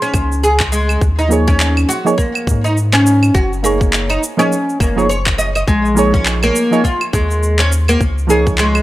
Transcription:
0.02 oud C#4, shaker
0.14 analog synth bass C#2, kick, claves, shaker
0.32 shaker
0.44 oud G#4, shaker
0.60 kick, clap, shaker
0.72 oud G#3, shaker
0.89 claves, shaker
1.01 analog synth bass D#2, kick, shaker
1.19 oud D#4, shaker
1.29 synth stab F3 A#3 D#4 G#4, shaker
1.33 synth stab C#5
1.48 oud C#4, kick, shaker
1.60 clap, shaker
1.77 claves, shaker
1.89 oud F#4, shaker
2.05 synth stab F3 A#3 D#4 G#4 C#5, shaker
2.18 oud A#3, kick, shaker
2.35 claves, shaker
2.47 analog synth bass G#2, kick, shaker
2.64 oud D#4, shaker
2.77 shaker
2.93 oud C#4, clap, shaker
3.07 shaker
3.23 claves, shaker
3.34 analog synth bass F#1, oud F#4, kick, shaker
3.53 shaker
3.63 synth stab A#3 D#4 G#4 C#5, oud A#3, shaker
3.81 kick, shaker
3.93 clap, shaker
4.10 oud D#4, claves, shaker
4.23 shaker
4.37 synth stab F3 A#3 D#4 G#4 C#5, oud C#4, shaker
4.52 shaker
4.69 shaker
4.80 analog synth bass F#1, oud A#3, kick, claves, shaker
4.96 synth stab F3 A#3 D#4 G#4 C#5, shaker
5.09 oud C#5, shaker
5.26 kick, clap, shaker
5.38 oud D#5, shaker
5.55 oud D#5, claves, shaker
5.67 analog synth bass A#1, oud G#3, kick, shaker
5.85 shaker
5.95 synth stab F3 A#3 D#4 G#4 C#5, shaker
6.14 oud C#4, kick, shaker
6.26 clap, shaker
6.43 oud A#3, claves, shaker
6.56 shaker
6.71 synth stab F3 A#3 D#4 G#4 C#5, shaker
6.84 oud F4, kick, shaker
7.01 claves, shaker
7.13 analog synth bass D#2, oud G#3, kick, shaker
7.31 shaker
7.43 shaker
7.59 oud C#4, clap, shaker
7.72 shaker
7.88 oud A#3, claves, shaker
8.00 analog synth bass C#2, kick, shaker
8.18 shaker
8.27 synth stab F3 A#3 D#4 G#4, oud G#4, shaker
8.31 synth stab C#5
8.47 kick, shaker
8.58 oud G#3, clap, shaker
8.75 claves, shaker

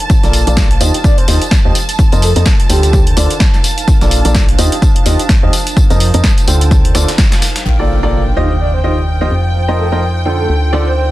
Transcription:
Already playing: ambient pad D4 F5, violin section A5
0.10 kick, closed hi-hat, tambourine
0.23 fm bass A#1, upright piano A#3 F4 A4 A#4 D5, snare, closed hi-hat, tambourine
0.33 closed hi-hat, open hi-hat, tambourine
0.47 fm bass A#1, upright piano A#3 F4 A4 A#4 D5, closed hi-hat, tambourine
0.57 kick, snare, closed hi-hat, tambourine
0.71 closed hi-hat
0.81 fm bass D#2, upright piano D#3 F4 G4 C5 D#5, ambient pad F4, closed hi-hat, open hi-hat, tambourine
0.94 closed hi-hat, tambourine
1.04 soft synth lead D5, kick, closed hi-hat, tambourine
1.18 soft synth lead C5, closed hi-hat
1.28 fm bass D#2, upright piano D#3 F4 G4 C5 D#5, soft synth lead C5, snare, closed hi-hat, open hi-hat, tambourine
1.42 closed hi-hat, tambourine
1.51 kick, snare, closed hi-hat, tambourine
1.65 fm bass D#2, upright piano F3 F4 G4 C5 D#5
1.75 closed hi-hat, open hi-hat, tambourine
1.89 ambient pad F5, closed hi-hat, tambourine
1.99 kick, closed hi-hat, tambourine
2.12 fm bass F2, upright piano F3 F4 A#4 C5 D#5, closed hi-hat, tambourine
2.22 soft synth lead A4, closed hi-hat, open hi-hat, tambourine
2.36 fm bass F2, upright piano F3 F4 A#4 C5 D#5, soft synth lead A4, closed hi-hat, tambourine
2.46 kick, snare, closed hi-hat, tambourine
2.60 closed hi-hat
2.70 fm bass D2, upright piano D3 F4 A4 C5 G5, soft synth lead G4, closed hi-hat, open hi-hat, tambourine
2.83 closed hi-hat, tambourine
2.93 ambient pad D4, kick, closed hi-hat, tambourine
3.07 closed hi-hat
3.17 fm bass D2, upright piano D3 F4 A4 C5 D5, closed hi-hat, open hi-hat, tambourine
3.30 closed hi-hat, tambourine
3.40 kick, snare, closed hi-hat, tambourine
3.54 snare, closed hi-hat
3.64 closed hi-hat, open hi-hat, tambourine
3.78 closed hi-hat, tambourine
3.88 kick, closed hi-hat, tambourine
4.01 fm bass A#1, upright piano A#3 F4 A4 A#4 D5, snare, closed hi-hat, tambourine
4.11 closed hi-hat, open hi-hat, tambourine
4.25 fm bass A#1, upright piano A#3 F4 A4 A#4 D5, closed hi-hat, tambourine
4.35 kick, snare, closed hi-hat, tambourine
4.49 closed hi-hat
4.58 fm bass D#2, upright piano D#3 F4 G4 C5 D#5, ambient pad F4, closed hi-hat, open hi-hat, tambourine
4.72 closed hi-hat, tambourine
4.82 kick, closed hi-hat, tambourine
4.96 closed hi-hat
5.06 fm bass D#2, upright piano D#3 F4 G4 C5 D#5, snare, closed hi-hat, open hi-hat, tambourine
5.19 closed hi-hat, tambourine
5.29 kick, snare, closed hi-hat, tambourine
5.43 fm bass D#2, upright piano F3 F4 G4 C5 D#5
5.53 closed hi-hat, open hi-hat, tambourine
5.64 ambient pad F5, closed hi-hat, tambourine
5.77 kick, closed hi-hat, tambourine
5.90 fm bass F2, upright piano F3 F4 A#4 C5 D#5, closed hi-hat, tambourine
6.00 closed hi-hat, open hi-hat, tambourine
6.14 fm bass F2, upright piano F3 F4 A#4 C5 D#5, closed hi-hat, tambourine
6.24 kick, snare, closed hi-hat, tambourine
6.38 closed hi-hat, tambourine
6.47 fm bass D2, upright piano D3 F4 A4 C5 G5, closed hi-hat, open hi-hat, tambourine
6.61 closed hi-hat, tambourine
6.71 ambient pad D4, kick, closed hi-hat, tambourine
6.85 closed hi-hat
6.95 fm bass D2, upright piano D3 F4 A4 C5 D5, snare, closed hi-hat, open hi-hat, tambourine
7.08 snare, closed hi-hat, tambourine
7.18 kick, snare, closed hi-hat, tambourine
7.32 snare, closed hi-hat, tambourine
7.42 snare, closed hi-hat, open hi-hat, tambourine
7.56 snare, closed hi-hat, tambourine
7.66 fm bass A#1, violin section G5, impact
7.79 upright piano A#3 F4 A4 A#4 D5
8.03 upright piano A#3 F4 A4 A#4 D5
8.37 fm bass D#2, upright piano D#3 F4 G4 C5 D#5, ambient pad F4
8.60 soft synth lead D5
8.74 soft synth lead C5
8.84 upright piano D#3 F4 G4 C5 D#5, soft synth lead C5
9.21 upright piano F3 F4 G4 C5 D#5
9.31 fm bass F2
9.68 upright piano F3 F4 A#4 C5 D#5
9.73 ambient pad F5
9.78 soft synth lead A4
9.92 upright piano F3 F4 A#4 C5 D#5, soft synth lead A4
10.25 upright piano D3 F4 A4 C5 G5
10.39 soft synth lead A4
10.49 fm bass D2, ambient pad D4
10.73 upright piano D3 F4 A4 C5 D5
10.86 soft synth lead C5
10.96 soft synth lead C5

